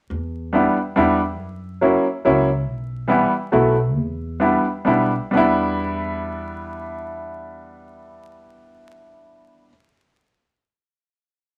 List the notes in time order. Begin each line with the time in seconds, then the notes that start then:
0.10 E2
0.53 G3 B3 D4 E4
0.96 E2 G3 B3 D4 E4
1.39 F#2
1.81 F#3 A#3 C#4 E4
2.25 C#2 F#3 A#3 C#4 E4
2.67 B1
3.08 E3 G3 B3 E4
3.52 B1 F#3 A3 B3 E4
3.95 E2
4.40 G3 B3 D4 E4
4.85 B1 G3 B3 D4 E4
5.31 E2 G3 B3 D4
5.37 E4